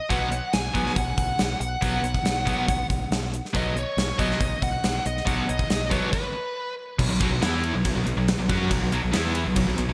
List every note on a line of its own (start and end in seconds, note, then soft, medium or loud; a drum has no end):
0.10 0.39 B1 medium
0.10 0.27 B2 medium
0.10 0.28 F#3 medium
0.10 0.28 B3 medium
0.10 0.55 F#5 medium
0.10 kick medium
0.10 closed hi-hat medium
0.32 closed hi-hat medium
0.53 0.68 B1 medium
0.53 0.98 G#5 medium
0.53 snare loud
0.53 closed hi-hat medium
0.74 0.89 B1 medium
0.74 0.92 B2 medium
0.74 0.92 F#3 medium
0.74 0.92 B3 medium
0.74 kick medium
0.74 closed hi-hat medium
0.86 snare soft
0.96 1.11 B1 medium
0.96 1.60 F#5 medium
0.96 kick loud
0.96 closed hi-hat medium
1.18 1.32 B1 medium
1.18 kick medium
1.18 closed hi-hat medium
1.39 1.54 B1 medium
1.39 snare medium
1.39 closed hi-hat medium
1.60 1.75 B1 medium
1.60 2.86 F#5 medium
1.60 closed hi-hat medium
1.81 1.97 B1 medium
1.81 1.99 B2 medium
1.81 1.99 F#3 medium
1.81 2.00 B3 medium
1.81 kick loud
1.81 closed hi-hat medium
2.03 2.18 B1 medium
2.03 closed hi-hat medium
2.14 kick medium
2.23 2.53 B1 medium
2.23 snare loud
2.23 closed hi-hat medium
2.46 2.63 B2 medium
2.46 2.64 F#3 medium
2.46 2.64 B3 medium
2.46 kick medium
2.46 closed hi-hat medium
2.68 2.83 B1 medium
2.68 kick loud
2.68 closed hi-hat medium
2.90 3.05 B1 medium
2.90 kick medium
2.90 closed hi-hat medium
3.11 3.40 B1 medium
3.11 snare medium
3.11 closed hi-hat medium
3.34 closed hi-hat medium
3.45 snare soft
3.53 3.84 B1 medium
3.53 3.71 B2 medium
3.53 3.72 F#3 medium
3.53 3.72 B3 medium
3.53 3.77 D#5 medium
3.53 kick loud
3.53 closed hi-hat medium
3.77 4.21 C#5 medium
3.77 closed hi-hat medium
3.97 4.12 B1 medium
3.97 snare medium
3.97 closed hi-hat medium
4.19 4.34 B1 medium
4.19 4.36 B2 medium
4.19 4.36 F#3 medium
4.19 4.37 B3 medium
4.19 4.63 D#5 medium
4.19 kick medium
4.19 closed hi-hat medium
4.31 snare soft
4.41 4.55 B1 medium
4.41 kick loud
4.41 closed hi-hat medium
4.62 4.77 B1 medium
4.62 5.06 F#5 medium
4.62 kick medium
4.62 closed hi-hat medium
4.84 4.98 B1 medium
4.84 snare medium
4.84 closed hi-hat medium
5.06 5.20 B1 medium
5.06 5.26 D#5 medium
5.06 closed hi-hat medium
5.17 snare soft
5.26 5.41 B1 medium
5.26 5.44 B2 medium
5.26 5.44 F#3 medium
5.26 5.45 B3 medium
5.26 5.49 F#5 medium
5.26 kick loud
5.26 closed hi-hat medium
5.49 5.64 B1 medium
5.49 5.93 D#5 medium
5.49 closed hi-hat medium
5.59 kick medium
5.70 5.99 B1 medium
5.70 snare loud
5.70 closed hi-hat medium
5.90 6.08 B2 medium
5.90 6.09 F#3 medium
5.90 6.09 B3 medium
5.90 6.12 C#5 medium
5.90 kick medium
5.90 closed hi-hat medium
6.12 6.73 B4 medium
6.12 kick loud
6.12 crash medium
6.99 7.09 B1 medium
6.99 7.10 B2 medium
6.99 7.10 F#3 medium
6.99 kick medium
6.99 crash loud
7.10 7.20 B1 medium
7.10 7.19 B2 medium
7.10 7.20 F#3 medium
7.20 7.30 B1 medium
7.20 7.30 B2 medium
7.20 7.31 F#3 medium
7.20 kick loud
7.20 ride medium
7.30 7.40 B1 medium
7.30 7.41 B2 medium
7.30 7.42 F#3 medium
7.41 7.71 E2 medium
7.41 7.73 E3 medium
7.41 7.73 B3 loud
7.41 7.74 E4 loud
7.41 snare loud
7.41 ride medium
7.64 ride medium
7.74 7.84 B1 medium
7.74 7.84 B2 medium
7.74 7.85 F#3 medium
7.85 7.95 B1 medium
7.85 7.94 B2 medium
7.85 7.95 F#3 medium
7.85 kick medium
7.85 ride medium
7.95 8.06 B1 medium
7.95 8.04 B2 medium
7.95 8.04 F#3 medium
8.05 8.16 B1 medium
8.05 8.16 B2 medium
8.05 8.16 F#3 medium
8.05 ride medium
8.17 8.37 B1 medium
8.17 8.34 B2 medium
8.17 8.34 F#3 medium
8.28 snare loud
8.28 ride medium
8.38 8.49 B1 medium
8.38 8.49 B2 medium
8.38 8.48 F#3 medium
8.49 8.69 F#2 loud
8.49 8.70 F#3 medium
8.49 8.70 C#4 medium
8.49 8.70 F#4 loud
8.49 kick loud
8.49 ride medium
8.71 8.81 B1 medium
8.71 8.80 B2 medium
8.71 8.81 F#3 medium
8.71 kick medium
8.71 ride loud
8.81 8.92 B1 medium
8.81 8.92 B2 medium
8.81 8.92 F#3 medium
8.92 9.02 B1 medium
8.92 9.02 B2 medium
8.92 9.02 F#3 loud
8.92 ride medium
9.03 9.13 B1 medium
9.03 9.13 B2 medium
9.03 9.13 F#3 medium
9.13 9.44 E2 medium
9.13 9.45 E3 loud
9.13 9.45 B3 loud
9.13 9.45 E4 loud
9.13 snare loud
9.13 ride loud
9.35 ride medium
9.45 9.56 B1 medium
9.45 9.55 B2 medium
9.45 9.55 F#3 medium
9.56 9.66 B1 medium
9.56 9.65 B2 medium
9.56 9.66 F#3 medium
9.56 kick medium
9.56 ride medium
9.67 9.77 B1 medium
9.67 9.77 B2 medium
9.67 9.77 F#3 medium
9.78 9.88 B1 medium
9.78 9.88 B2 medium
9.78 9.87 F#3 medium
9.78 ride medium
9.89 9.93 B1 medium
9.89 9.93 B2 medium
9.89 9.93 F#3 medium